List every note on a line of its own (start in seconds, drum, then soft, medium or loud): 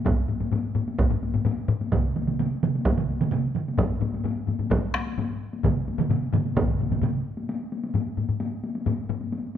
0.05 taiko loud
0.05 taiko low-mid medium
0.05 taiko high medium
0.28 taiko low-mid medium
0.28 taiko high medium
0.40 taiko low-mid medium
0.40 taiko high medium
0.52 taiko low-mid medium
0.52 taiko high medium
0.75 taiko low-mid medium
0.75 taiko high soft
0.88 taiko high medium
0.99 taiko loud
0.99 taiko high medium
1.10 taiko low-mid medium
1.23 taiko high medium
1.34 taiko low-mid medium
1.34 taiko high medium
1.45 taiko low-mid loud
1.45 taiko high medium
1.68 taiko low-mid loud
1.81 taiko high medium
1.92 taiko medium
1.92 taiko mid medium
1.92 taiko high medium
2.16 taiko mid medium
2.16 taiko high medium
2.27 taiko mid medium
2.27 taiko high medium
2.39 taiko mid loud
2.39 taiko high medium
2.63 taiko mid loud
2.63 taiko high soft
2.75 taiko high medium
2.85 taiko loud
2.85 taiko high medium
2.98 taiko mid medium
3.10 taiko high soft
3.21 taiko mid loud
3.21 taiko high medium
3.32 taiko mid loud
3.32 taiko high medium
3.56 taiko mid medium
3.68 taiko high medium
3.78 taiko loud
3.78 taiko low-mid loud
3.78 taiko high medium
4.01 taiko low-mid medium
4.01 taiko high medium
4.14 taiko high medium
4.24 taiko low-mid medium
4.24 taiko high medium
4.47 taiko low-mid medium
4.47 taiko high medium
4.59 taiko low-mid medium
4.59 taiko high soft
4.70 taiko loud
4.70 taiko low-mid medium
4.70 taiko high medium
4.94 taiko rim medium
4.94 taiko high medium
5.07 taiko high soft
5.18 taiko low-mid medium
5.18 taiko high medium
5.53 taiko high soft
5.63 taiko medium
5.63 taiko low-mid medium
5.63 taiko mid medium
5.63 taiko high medium
5.88 taiko high medium
5.98 taiko low-mid loud
5.98 taiko mid medium
5.98 taiko high medium
6.10 taiko low-mid medium
6.10 taiko mid medium
6.10 taiko high medium
6.33 taiko low-mid medium
6.33 taiko mid loud
6.33 taiko high medium
6.46 taiko high soft
6.56 taiko loud
6.56 taiko low-mid medium
6.56 taiko mid medium
6.56 taiko high medium
6.67 taiko low-mid medium
6.67 taiko mid medium
6.79 taiko low-mid medium
6.79 taiko mid medium
6.79 taiko high soft
6.90 taiko low-mid medium
6.90 taiko mid medium
6.90 taiko high medium
7.02 taiko low-mid medium
7.02 taiko mid loud
7.02 taiko high medium
7.37 taiko high soft
7.49 taiko high medium
7.72 taiko high medium
7.84 taiko high medium
7.94 taiko low-mid medium
7.94 taiko high medium
8.17 taiko low-mid medium
8.17 taiko high medium
8.29 taiko low-mid medium
8.40 taiko high medium
8.64 taiko high medium
8.75 taiko high medium
8.86 taiko low-mid loud
8.86 taiko high medium
9.09 taiko low-mid loud
9.09 taiko high soft
9.21 taiko high soft
9.32 taiko high medium